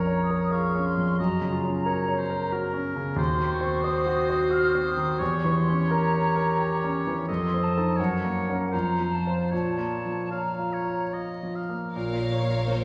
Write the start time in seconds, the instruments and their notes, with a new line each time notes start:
Already playing: grand piano A#1 F2 C#4 A#4, clarinet A#4, oboe C#5, flute section A#5
0.07 grand piano C#5
0.19 flute section D#6
0.30 grand piano A#4
0.50 grand piano F4, clarinet G#4, oboe F5, flute section C#6
0.75 grand piano C#4
0.84 flute section C6
0.98 grand piano F2
1.18 grand piano F#2, clarinet F#4, oboe D#5, flute section A#5
1.41 grand piano C#3
1.52 clarinet F4
1.64 grand piano C#4
1.84 clarinet F#4, grand piano A#4, oboe C#5
2.08 grand piano C#5
2.18 oboe C5
2.30 grand piano A#4
2.51 clarinet F#4, grand piano F#4, oboe A#4
2.74 grand piano C#4
2.96 grand piano C#3
3.16 grand piano D#2, clarinet F#4, oboe C5, flute section C6
3.38 grand piano D#3
3.50 flute section C#6
3.61 grand piano C4
3.83 grand piano C5, flute section D#6
4.06 grand piano F#4
4.30 grand piano C5
4.50 grand piano F#4, flute section F6
4.75 grand piano C4
4.85 flute section D#6
4.97 grand piano D#3
5.19 grand piano E2, clarinet G4, oboe C#5, flute section C#6
5.45 grand piano E3
5.54 flute section C6
5.69 grand piano C#4
5.82 flute section C6
5.89 grand piano A#4, flute section A#5
6.14 grand piano C#5
6.36 grand piano A#4
6.59 grand piano G4
6.84 grand piano C#4
7.07 grand piano E3
7.27 grand piano F2, clarinet A4, oboe D#5, flute section C6
7.54 grand piano C4
7.63 flute section A5
7.78 grand piano D#4 A4
7.96 grand piano F#2, clarinet A#4, oboe C#5, flute section F#5
8.24 grand piano A#3
8.49 grand piano C#4 A#4
8.72 grand piano F2, clarinet F4, oboe C5, flute section A#5
9.00 grand piano F3
9.12 flute section A5
9.26 grand piano F4 C5
9.51 grand piano A#2, clarinet F4, oboe C#5, flute section A5
9.78 grand piano A#3
10.06 grand piano F3
10.31 clarinet F4, grand piano C#5, oboe F5, flute section A#5
10.59 grand piano F4
10.73 oboe C#5
10.85 grand piano C#5
11.14 grand piano F4, oboe D#5
11.43 grand piano F3
11.55 oboe F5
11.69 grand piano A#3
11.93 double bass section A#1, cello section A#2, grand piano A#2, violin section A#4 C#5 F5, viola section A#4
12.13 grand piano F4
12.31 viola section C#5, grand piano C#5
12.50 grand piano F4
12.68 grand piano F3, viola section C5